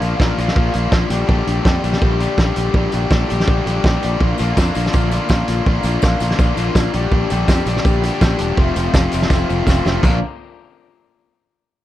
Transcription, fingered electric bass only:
0.01 A#1
0.20 A#1
0.38 A#1
0.56 A#1
0.75 A#1
0.92 A#1
1.10 A#1
1.29 A#1
1.47 A#1
1.65 F2
1.84 A#1
2.02 A#1
2.38 A#1
2.57 A#1
2.74 A#1
2.94 A#1
3.11 A#1
3.32 A#1
3.48 A#1
3.66 A#1
3.84 A#1
4.04 A#1
4.21 A#1
4.40 A#1
4.57 F2
4.76 A#1
4.94 A#1
5.30 A#1
5.48 A#1
5.66 A#1
5.84 A#1
6.03 A#1
6.21 A#1
6.39 A#1
6.57 A#1
6.75 A#1
6.94 A#1
7.11 A#1
7.32 A#1
7.48 F2
7.66 A#1
7.85 A#1
8.21 A#1
8.40 E1
8.58 F1
8.76 F1
8.94 F1
9.14 F1
9.31 F1
9.51 F1
9.67 F1
9.86 F1
10.03 A#1

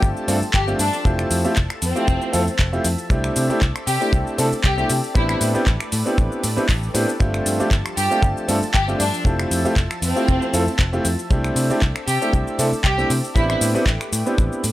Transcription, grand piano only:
Already playing: A3 C4 D4 F4 G4
0.28 A3 C4 D4 F4 A4
0.67 A3 C4 D4 F4 G4
1.04 A3 C4 E4 F4 G4
1.44 A3 C4 E4 F4 G4
1.95 A3 C4 E4 F4 G4
2.32 A3 C4 E4 F4 A4
2.72 A3 C4 E4 F4 G4
3.10 A3 C4 D4 E4 G4
3.49 A3 C4 D4 E4 G4
4.00 A3 C4 D4 E4 G4
4.38 A3 C4 D4 E4 A4
4.77 A3 C4 D4 E4 G4
5.14 B3 C4 D4 E4 G4
5.54 B3 C4 D4 E4 G4
6.06 B3 C4 D4 E4 G4
6.56 B3 C4 D4 E4 G4
6.94 B3 C4 D4 E4 G4
7.19 A3 C4 D4 F4 G4
7.59 A3 C4 D4 F4 G4
8.10 A3 C4 D4 F4 G4
8.48 A3 C4 D4 F4 A4
8.87 A3 C4 D4 F4 G4
9.25 A3 C4 E4 F4 G4
9.64 A3 C4 E4 F4 G4
10.16 A3 C4 E4 F4 G4
10.53 A3 C4 E4 F4 A4
10.93 A3 C4 E4 F4 G4
11.30 A3 C4 D4 E4 G4
11.70 A3 C4 D4 E4 G4
12.22 A3 C4 D4 E4 G4
12.59 A3 C4 D4 E4 A4
12.98 A3 C4 D4 E4 G4
13.35 B3 C4 D4 E4 G4
13.74 B3 C4 D4 E4 G4
14.26 B3 C4 D4 E4 G4

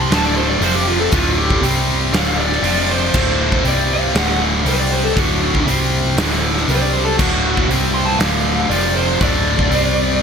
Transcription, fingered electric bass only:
0.10 D1
0.60 F1
1.13 D1
1.62 C2
2.13 D1
2.62 F1
3.14 D1
3.64 C2
4.15 D1
4.65 C2
5.17 D1
5.66 C2
6.16 D1
6.68 C2
7.19 D1
7.68 C2
8.19 D1
8.70 F1
9.21 D1
9.70 C2

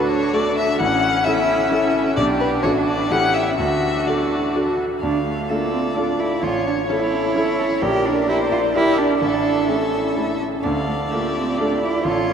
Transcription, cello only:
Already playing: D4
0.79 C#4
1.24 E4
1.70 C#4
2.16 D4
3.10 E4
3.59 F#4
5.02 D4
5.26 A3
5.50 A#3
5.73 C4
5.95 D4
6.20 E4
6.43 F4
6.67 D4
6.90 E4
7.82 G4
8.05 D4
8.29 E4
8.52 F4
8.76 E4
8.98 D4
9.21 D4
9.68 C#4
10.63 D4
10.87 A3
11.11 A#3
11.35 C4
11.58 D4
11.82 E4
12.04 F4

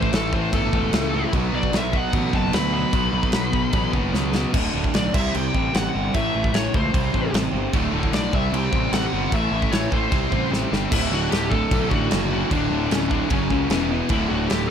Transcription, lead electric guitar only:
Already playing: C5
0.15 A4
0.34 C5
0.54 A4
1.55 D5
1.77 E5
1.97 F#5
2.36 A5
2.54 B5
2.74 B5
4.95 D5
5.15 E5
5.35 G5
5.76 F#5
6.15 E5
6.54 C#5
6.76 C5
8.14 D5
8.34 E5
8.55 G5
8.93 F#5
9.35 E5
9.71 C#5
9.94 C5
10.92 E4
11.13 F#4
11.31 G4
11.50 A4
11.89 F#4
12.52 D4
12.92 C#4
13.10 D4
13.30 C#4
14.10 E4
14.29 F#4
14.48 G4

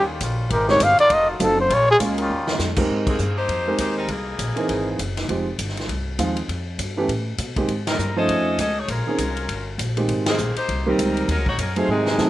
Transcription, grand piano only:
0.68 G#3 C4 D#4 G4 A#4
1.40 F#3 C4 D#4 F4 A4
1.99 G#3 A#3 C#4 F4 A#4
2.77 G#3 C4 D#4 G4 A#4
3.67 G#3 C4 D#4 G4 A#4
4.56 E3 A#3 C4 D#4 G#4
5.29 F3 G#3 C4 D#4 G4
6.19 F3 G#3 C4 D#4 F4
6.97 E3 A3 B3 C#4 G4
7.57 D#3 G#3 A#3 C4 G4
8.16 F3 A3 C#4 D#4 C5
9.07 D#3 A#3 C4 C#4 G#4
9.97 D#3 G#3 A#3 C4 G4
10.86 D#3 G3 A#3 C4 G4
11.76 F#3 A3 C4 D#4 G#4
12.18 F#3 A3 C4 D#4 A4

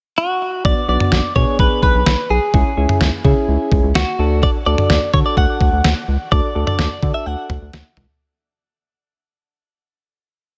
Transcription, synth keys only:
0.65 B3 D4 F#4
0.88 B3 D4 F#4
1.36 B3 D4 G#4
2.54 C#4 E4 G#4
2.77 C#4 E4 G#4
3.25 C#4 E4 G#4
4.19 D4 F#4 A4
4.66 D4 F#4 A4
5.14 D4 F#4 A4
6.32 D4 F#4 A4
6.55 D4 F#4 A4
7.03 D4 F#4 A4

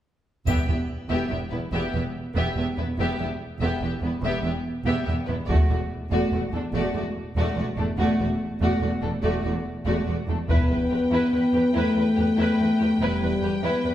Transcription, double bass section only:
0.47 E1
0.68 E1
1.11 E1
1.31 E1
1.52 E1
1.72 E1
1.94 E1
2.35 E1
2.57 E1
2.78 E1
2.99 E1
3.20 E1
3.61 E1
3.82 E1
4.02 E1
4.23 E1
4.44 E1
4.86 E1
5.07 E1
5.28 E1
5.48 E1
5.70 E1
6.12 E1
6.32 E1
6.53 E1
6.73 E1
6.95 E1
7.36 E1
7.57 E1
7.78 E1
7.99 E1
8.20 E1
8.61 E1
8.82 E1
9.03 E1
9.24 E1
9.45 E1
9.86 E1
10.08 E1
10.29 E1
10.50 E1
13.00 E1

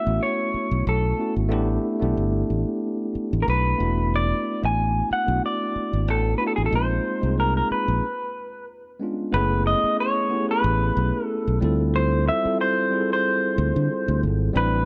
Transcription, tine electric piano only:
Already playing: A3 B3 C#4 E4 F#4
0.05 A3 B3 C#4 E4 F#4
1.17 A3 B3 C#4 E4 F#4
1.49 A3 B3 D4 E4
1.53 G4
1.99 A3 B3 D4 E4 G4
3.77 A3 B3 D4 E4 F#4
5.25 A3 B3 D4 E4
5.29 F#4
6.38 A3 B3 D4 E4 F#4
6.71 G#3 A#3 C4 D#4
6.75 F4
7.21 G#3 A#3 C4 D#4 G#4
8.99 G#3 B3 C#4 D4 F4
9.32 G#3 B3 C#4 E4 G#4
9.38 A3
10.29 A3 B3 C#4 E4
10.33 G4
10.40 G#4
11.60 G3 C4 E4 F4 A4
12.43 G3 C4 E4 F4
12.47 A4
12.90 G3 C4 E4 F4
12.94 G#4
13.00 A4
14.53 G3 C4 D4 E4
14.57 B4

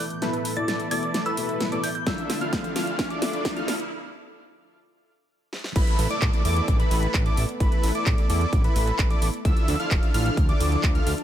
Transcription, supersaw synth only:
0.22 E4 A4 B4
0.57 E4 A4 D5
0.91 E4 A4 D5
1.26 E4 A4 B4
1.72 E4 A4 D5
2.07 D4 E4 F4 A4 E5
2.41 D4 E4 F4 A4 F5
2.76 D4 E4 F4 A4 F5
3.10 D4 E4 F4 A4 D5
3.57 D4 E4 F4 A4 F5
5.76 E4 A4 B4
6.10 E4 A4 D5
6.45 E4 A4 D5
6.80 E4 A4 B4
7.26 E4 A4 D5
7.60 E4 A4 B4
7.95 E4 A4 D5
8.30 E4 A4 D5
8.64 E4 A4 B4
9.10 E4 A4 D5
9.45 D4 E4 F4 A4 E5
9.80 D4 E4 F4 A4 F5
10.14 D4 E4 F4 A4 F5
10.49 D4 E4 F4 A4 D5
10.95 D4 E4 F4 A4 F5

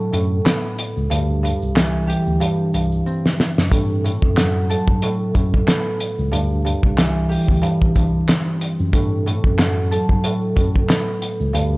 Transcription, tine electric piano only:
0.13 F#2
0.97 C#2
1.11 D2
1.62 C2
2.28 D2
2.75 C2
3.58 F#2
3.72 G2
4.23 F#2
4.88 G2
5.35 F#2
6.19 C#2
6.33 D2
6.84 C2
7.49 D2
7.96 C2
8.80 F#2
8.93 G2
9.44 F#2
10.10 G2
10.57 F#2
11.41 C#2
11.55 D2

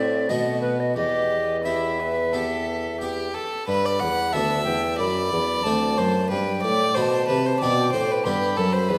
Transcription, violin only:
Already playing: C4
0.28 B3
0.97 G4
1.64 E4
1.99 B4
2.33 A4
3.01 G4
3.34 A4
3.68 B4
3.85 D5
4.00 F#5
4.33 E5
4.99 D5
5.98 C5
6.30 B4
6.63 D5
6.95 C5
7.28 B4
7.46 C5
7.60 D5
7.92 C5
8.11 B4
8.25 G4
8.57 A4
8.73 C5
8.88 B4

